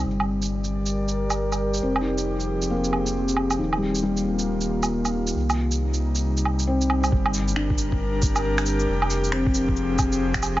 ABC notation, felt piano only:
X:1
M:4/4
L:1/16
Q:"Swing 16ths" 1/4=136
K:Fdor
V:1 name="Felt piano"
z16 | C E6- E B,6- B, z | E, G,3 G,6- G, z4 z | z12 C4- |
C2 z2 D6- D z4 z | z4 C6- C z4 z |]